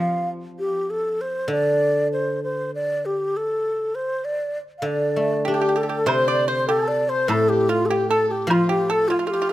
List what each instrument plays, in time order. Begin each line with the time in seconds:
Already playing: guzheng F3
0.00 xiao F5
0.59 xiao G4
0.90 xiao A4
1.21 xiao C5
1.48 guzheng D3, xiao D5
2.13 xiao C5
2.44 xiao C5
2.75 xiao D5
3.05 xiao G4
3.37 xiao A4
3.95 xiao C5
4.25 xiao D5
4.78 guzheng D3, xiao F5
4.86 xiao D5
5.16 guzheng A3
5.45 guzheng D4, pipa G4, dizi G4, xiao G4
5.54 pipa G4
5.61 pipa G4
5.69 pipa G4
5.76 pipa G4, dizi A4, xiao A4
5.83 pipa G4
5.89 pipa G4
6.06 guzheng C3, pipa C5, xiao C5, dizi C5, high woodblock
6.28 pipa D5, xiao D5
6.48 dizi C5, pipa C5, xiao C5
6.68 pipa G4, dizi A4, xiao A4, low woodblock
6.86 pipa A4, xiao D5
7.08 dizi C5, xiao C5
7.28 guzheng A2, xiao A4, pipa A4, dizi A4, high woodblock
7.49 xiao G4, dizi G4
7.69 xiao F4, pipa F4, dizi F4
7.86 xiao G4 A4, dizi A4
7.90 pipa G4, dizi G4, low woodblock
8.09 xiao A4, dizi A4, pipa A4
8.29 xiao G4, dizi G4
8.47 guzheng F3, xiao F4, pipa F4, high woodblock
8.51 dizi F4
8.69 pipa G4, xiao G4
8.90 pipa A4, xiao A4, dizi A4
9.08 xiao F4, pipa F4, dizi F4, low woodblock
9.19 pipa F4
9.27 pipa F4, xiao G4 A4
9.32 pipa F4, dizi G4
9.42 pipa F4
9.49 pipa F4